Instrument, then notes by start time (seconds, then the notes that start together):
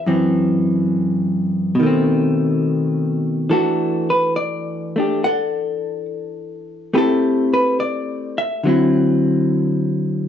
hollow-body jazz guitar
0.06 F#2 E3 C4
1.75 B2
1.80 D#3 A3
1.86 C4
3.50 E3 A3 D4 F#4 A4
4.10 B4
4.36 D5
4.96 A3 D4 G4
5.24 A4 D5 F#5
6.94 A3 C4 E4 G4 B4
6.98 A4
7.54 B4
7.80 D5
8.38 E5
8.64 D3 F#3 C4
8.69 E4